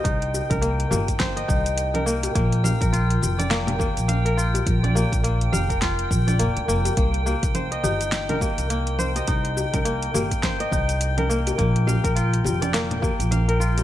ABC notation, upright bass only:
X:1
M:4/4
L:1/16
Q:"Swing 16ths" 1/4=104
K:Cm
V:1 name="Upright bass" clef=bass
C,,2 z C,,2 z G,,,3 z C,,4- C,, z | B,,,2 z B,,,2 z F,,,4 z B,,,4 z | B,,,2 z B,,,2 z F,,,3 z B,,,2 F,,, D,, F,,, z | C,,2 z C,,2 z G,,,4 z C,,4 z |
C,,2 z C,,2 z G,,,3 z C,,4- C,, z | B,,,2 z B,,,2 z F,,,4 z B,,,4 z |]